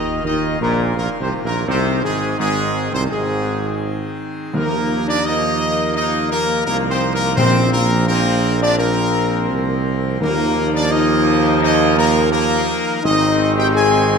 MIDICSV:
0, 0, Header, 1, 7, 480
1, 0, Start_track
1, 0, Tempo, 715137
1, 1126, Time_signature, 4, 2, 24, 8
1, 3524, Tempo, 707547
1, 9583, End_track
2, 0, Start_track
2, 0, Title_t, "Trumpet section"
2, 0, Program_c, 0, 61
2, 0, Note_on_c, 0, 75, 114
2, 159, Note_off_c, 0, 75, 0
2, 167, Note_on_c, 0, 75, 106
2, 392, Note_off_c, 0, 75, 0
2, 407, Note_on_c, 0, 70, 100
2, 631, Note_off_c, 0, 70, 0
2, 647, Note_on_c, 0, 70, 110
2, 719, Note_off_c, 0, 70, 0
2, 813, Note_on_c, 0, 72, 100
2, 883, Note_off_c, 0, 72, 0
2, 970, Note_on_c, 0, 70, 110
2, 1116, Note_off_c, 0, 70, 0
2, 1127, Note_on_c, 0, 72, 110
2, 1349, Note_off_c, 0, 72, 0
2, 1367, Note_on_c, 0, 68, 116
2, 1589, Note_off_c, 0, 68, 0
2, 1608, Note_on_c, 0, 68, 125
2, 1941, Note_off_c, 0, 68, 0
2, 1970, Note_on_c, 0, 72, 127
2, 2023, Note_off_c, 0, 72, 0
2, 2080, Note_on_c, 0, 68, 110
2, 2777, Note_off_c, 0, 68, 0
2, 3040, Note_on_c, 0, 70, 122
2, 3376, Note_off_c, 0, 70, 0
2, 3406, Note_on_c, 0, 74, 127
2, 3516, Note_off_c, 0, 74, 0
2, 3522, Note_on_c, 0, 75, 127
2, 3993, Note_off_c, 0, 75, 0
2, 4002, Note_on_c, 0, 75, 119
2, 4226, Note_off_c, 0, 75, 0
2, 4239, Note_on_c, 0, 70, 127
2, 4464, Note_off_c, 0, 70, 0
2, 4475, Note_on_c, 0, 70, 127
2, 4549, Note_off_c, 0, 70, 0
2, 4638, Note_on_c, 0, 72, 112
2, 4789, Note_off_c, 0, 72, 0
2, 4800, Note_on_c, 0, 70, 127
2, 4951, Note_off_c, 0, 70, 0
2, 4954, Note_on_c, 0, 72, 127
2, 5182, Note_off_c, 0, 72, 0
2, 5197, Note_on_c, 0, 70, 127
2, 5423, Note_off_c, 0, 70, 0
2, 5437, Note_on_c, 0, 70, 127
2, 5773, Note_off_c, 0, 70, 0
2, 5799, Note_on_c, 0, 74, 127
2, 5911, Note_off_c, 0, 74, 0
2, 5919, Note_on_c, 0, 70, 127
2, 6615, Note_off_c, 0, 70, 0
2, 6883, Note_on_c, 0, 70, 127
2, 7219, Note_off_c, 0, 70, 0
2, 7248, Note_on_c, 0, 74, 127
2, 7358, Note_off_c, 0, 74, 0
2, 7362, Note_on_c, 0, 75, 127
2, 7836, Note_off_c, 0, 75, 0
2, 7844, Note_on_c, 0, 75, 127
2, 8066, Note_off_c, 0, 75, 0
2, 8083, Note_on_c, 0, 70, 125
2, 8305, Note_off_c, 0, 70, 0
2, 8318, Note_on_c, 0, 70, 127
2, 8776, Note_off_c, 0, 70, 0
2, 8806, Note_on_c, 0, 75, 127
2, 9142, Note_off_c, 0, 75, 0
2, 9178, Note_on_c, 0, 79, 127
2, 9229, Note_off_c, 0, 79, 0
2, 9290, Note_on_c, 0, 80, 127
2, 9583, Note_off_c, 0, 80, 0
2, 9583, End_track
3, 0, Start_track
3, 0, Title_t, "French horn section"
3, 0, Program_c, 1, 60
3, 0, Note_on_c, 1, 63, 92
3, 163, Note_off_c, 1, 63, 0
3, 171, Note_on_c, 1, 63, 108
3, 393, Note_off_c, 1, 63, 0
3, 409, Note_on_c, 1, 58, 85
3, 632, Note_off_c, 1, 58, 0
3, 655, Note_on_c, 1, 58, 96
3, 725, Note_off_c, 1, 58, 0
3, 814, Note_on_c, 1, 60, 87
3, 884, Note_off_c, 1, 60, 0
3, 975, Note_on_c, 1, 58, 98
3, 1119, Note_off_c, 1, 58, 0
3, 1130, Note_on_c, 1, 60, 108
3, 1350, Note_off_c, 1, 60, 0
3, 1364, Note_on_c, 1, 56, 94
3, 1587, Note_off_c, 1, 56, 0
3, 1607, Note_on_c, 1, 56, 91
3, 1940, Note_off_c, 1, 56, 0
3, 1960, Note_on_c, 1, 60, 98
3, 2075, Note_on_c, 1, 56, 92
3, 2082, Note_off_c, 1, 60, 0
3, 2775, Note_off_c, 1, 56, 0
3, 3042, Note_on_c, 1, 58, 115
3, 3378, Note_off_c, 1, 58, 0
3, 3406, Note_on_c, 1, 62, 122
3, 3516, Note_off_c, 1, 62, 0
3, 3522, Note_on_c, 1, 63, 109
3, 3994, Note_off_c, 1, 63, 0
3, 4002, Note_on_c, 1, 63, 121
3, 4226, Note_off_c, 1, 63, 0
3, 4245, Note_on_c, 1, 58, 117
3, 4467, Note_off_c, 1, 58, 0
3, 4485, Note_on_c, 1, 58, 108
3, 4632, Note_off_c, 1, 58, 0
3, 4651, Note_on_c, 1, 60, 119
3, 4721, Note_off_c, 1, 60, 0
3, 4812, Note_on_c, 1, 58, 110
3, 4957, Note_off_c, 1, 58, 0
3, 4968, Note_on_c, 1, 60, 127
3, 5189, Note_off_c, 1, 60, 0
3, 5208, Note_on_c, 1, 58, 110
3, 5428, Note_off_c, 1, 58, 0
3, 5450, Note_on_c, 1, 58, 125
3, 5780, Note_off_c, 1, 58, 0
3, 5805, Note_on_c, 1, 62, 127
3, 5914, Note_off_c, 1, 62, 0
3, 5925, Note_on_c, 1, 58, 109
3, 6617, Note_off_c, 1, 58, 0
3, 6888, Note_on_c, 1, 58, 127
3, 7222, Note_off_c, 1, 58, 0
3, 7249, Note_on_c, 1, 62, 127
3, 7364, Note_on_c, 1, 63, 117
3, 7367, Note_off_c, 1, 62, 0
3, 7817, Note_off_c, 1, 63, 0
3, 7845, Note_on_c, 1, 63, 127
3, 8066, Note_off_c, 1, 63, 0
3, 8082, Note_on_c, 1, 58, 120
3, 8305, Note_off_c, 1, 58, 0
3, 8317, Note_on_c, 1, 58, 127
3, 8775, Note_off_c, 1, 58, 0
3, 8802, Note_on_c, 1, 63, 127
3, 9163, Note_on_c, 1, 67, 127
3, 9165, Note_off_c, 1, 63, 0
3, 9276, Note_off_c, 1, 67, 0
3, 9283, Note_on_c, 1, 68, 126
3, 9583, Note_off_c, 1, 68, 0
3, 9583, End_track
4, 0, Start_track
4, 0, Title_t, "Pipe organ"
4, 0, Program_c, 2, 19
4, 0, Note_on_c, 2, 51, 68
4, 0, Note_on_c, 2, 58, 65
4, 0, Note_on_c, 2, 65, 76
4, 0, Note_on_c, 2, 70, 60
4, 1097, Note_off_c, 2, 58, 0
4, 1097, Note_off_c, 2, 65, 0
4, 1098, Note_off_c, 2, 70, 0
4, 1131, Note_on_c, 2, 60, 70
4, 1132, Note_on_c, 2, 63, 70
4, 1132, Note_on_c, 2, 68, 71
4, 3019, Note_off_c, 2, 51, 0
4, 3050, Note_off_c, 2, 60, 0
4, 3050, Note_off_c, 2, 68, 0
4, 3050, Note_on_c, 2, 70, 80
4, 3052, Note_on_c, 2, 53, 83
4, 3054, Note_on_c, 2, 58, 76
4, 4950, Note_on_c, 2, 60, 83
4, 4966, Note_off_c, 2, 63, 0
4, 6868, Note_off_c, 2, 58, 0
4, 6870, Note_off_c, 2, 53, 0
4, 6874, Note_off_c, 2, 70, 0
4, 6876, Note_off_c, 2, 60, 0
4, 6881, Note_on_c, 2, 58, 94
4, 6883, Note_on_c, 2, 53, 95
4, 6883, Note_on_c, 2, 63, 103
4, 6887, Note_on_c, 2, 70, 94
4, 8777, Note_off_c, 2, 58, 0
4, 8778, Note_off_c, 2, 53, 0
4, 8780, Note_off_c, 2, 70, 0
4, 8799, Note_on_c, 2, 51, 94
4, 8801, Note_on_c, 2, 56, 84
4, 8804, Note_on_c, 2, 72, 85
4, 9583, Note_off_c, 2, 51, 0
4, 9583, Note_off_c, 2, 56, 0
4, 9583, Note_off_c, 2, 63, 0
4, 9583, Note_off_c, 2, 72, 0
4, 9583, End_track
5, 0, Start_track
5, 0, Title_t, "Trombone section"
5, 0, Program_c, 3, 61
5, 0, Note_on_c, 3, 51, 87
5, 139, Note_off_c, 3, 51, 0
5, 166, Note_on_c, 3, 51, 97
5, 391, Note_off_c, 3, 51, 0
5, 408, Note_on_c, 3, 46, 117
5, 631, Note_off_c, 3, 46, 0
5, 646, Note_on_c, 3, 46, 98
5, 795, Note_off_c, 3, 46, 0
5, 800, Note_on_c, 3, 48, 93
5, 952, Note_off_c, 3, 48, 0
5, 959, Note_on_c, 3, 46, 100
5, 1111, Note_off_c, 3, 46, 0
5, 1115, Note_on_c, 3, 48, 118
5, 1343, Note_off_c, 3, 48, 0
5, 1353, Note_on_c, 3, 44, 120
5, 1583, Note_off_c, 3, 44, 0
5, 1591, Note_on_c, 3, 44, 113
5, 1932, Note_off_c, 3, 44, 0
5, 1955, Note_on_c, 3, 48, 97
5, 2071, Note_off_c, 3, 48, 0
5, 2080, Note_on_c, 3, 44, 106
5, 2778, Note_off_c, 3, 44, 0
5, 3046, Note_on_c, 3, 58, 107
5, 3049, Note_on_c, 3, 53, 91
5, 3497, Note_off_c, 3, 58, 0
5, 3498, Note_off_c, 3, 53, 0
5, 3522, Note_on_c, 3, 53, 102
5, 3523, Note_on_c, 3, 58, 98
5, 3975, Note_off_c, 3, 53, 0
5, 3976, Note_off_c, 3, 58, 0
5, 4003, Note_on_c, 3, 58, 109
5, 4005, Note_on_c, 3, 53, 88
5, 4456, Note_off_c, 3, 58, 0
5, 4457, Note_off_c, 3, 53, 0
5, 4479, Note_on_c, 3, 58, 104
5, 4482, Note_on_c, 3, 53, 104
5, 4934, Note_off_c, 3, 58, 0
5, 4935, Note_off_c, 3, 53, 0
5, 4959, Note_on_c, 3, 53, 108
5, 4959, Note_on_c, 3, 60, 109
5, 5414, Note_off_c, 3, 53, 0
5, 5414, Note_off_c, 3, 60, 0
5, 5436, Note_on_c, 3, 53, 107
5, 5437, Note_on_c, 3, 60, 122
5, 5890, Note_off_c, 3, 53, 0
5, 5890, Note_off_c, 3, 60, 0
5, 5916, Note_on_c, 3, 53, 100
5, 5917, Note_on_c, 3, 60, 108
5, 6853, Note_off_c, 3, 53, 0
5, 6854, Note_off_c, 3, 60, 0
5, 6881, Note_on_c, 3, 58, 127
5, 6882, Note_on_c, 3, 53, 127
5, 8692, Note_off_c, 3, 53, 0
5, 8692, Note_off_c, 3, 58, 0
5, 8807, Note_on_c, 3, 51, 115
5, 8810, Note_on_c, 3, 60, 125
5, 9583, Note_off_c, 3, 51, 0
5, 9583, Note_off_c, 3, 60, 0
5, 9583, End_track
6, 0, Start_track
6, 0, Title_t, "Timpani"
6, 0, Program_c, 4, 47
6, 3045, Note_on_c, 4, 51, 117
6, 3736, Note_off_c, 4, 51, 0
6, 4962, Note_on_c, 4, 46, 117
6, 5654, Note_off_c, 4, 46, 0
6, 6884, Note_on_c, 4, 51, 114
6, 7579, Note_off_c, 4, 51, 0
6, 9583, End_track
7, 0, Start_track
7, 0, Title_t, "Tuba"
7, 0, Program_c, 5, 58
7, 0, Note_on_c, 5, 39, 93
7, 139, Note_off_c, 5, 39, 0
7, 163, Note_on_c, 5, 39, 104
7, 389, Note_off_c, 5, 39, 0
7, 406, Note_on_c, 5, 34, 104
7, 630, Note_off_c, 5, 34, 0
7, 648, Note_on_c, 5, 34, 103
7, 720, Note_off_c, 5, 34, 0
7, 805, Note_on_c, 5, 36, 105
7, 877, Note_off_c, 5, 36, 0
7, 966, Note_on_c, 5, 34, 96
7, 1114, Note_off_c, 5, 34, 0
7, 1125, Note_on_c, 5, 36, 115
7, 1368, Note_on_c, 5, 32, 94
7, 1378, Note_off_c, 5, 36, 0
7, 1601, Note_off_c, 5, 32, 0
7, 1605, Note_on_c, 5, 32, 108
7, 1939, Note_off_c, 5, 32, 0
7, 1966, Note_on_c, 5, 36, 112
7, 2077, Note_off_c, 5, 36, 0
7, 2091, Note_on_c, 5, 32, 97
7, 2783, Note_off_c, 5, 32, 0
7, 3048, Note_on_c, 5, 39, 103
7, 4456, Note_off_c, 5, 39, 0
7, 4485, Note_on_c, 5, 36, 103
7, 4961, Note_on_c, 5, 34, 120
7, 4972, Note_off_c, 5, 36, 0
7, 6402, Note_on_c, 5, 36, 114
7, 6412, Note_off_c, 5, 34, 0
7, 6878, Note_off_c, 5, 36, 0
7, 6882, Note_on_c, 5, 39, 127
7, 8690, Note_off_c, 5, 39, 0
7, 8805, Note_on_c, 5, 32, 127
7, 9583, Note_off_c, 5, 32, 0
7, 9583, End_track
0, 0, End_of_file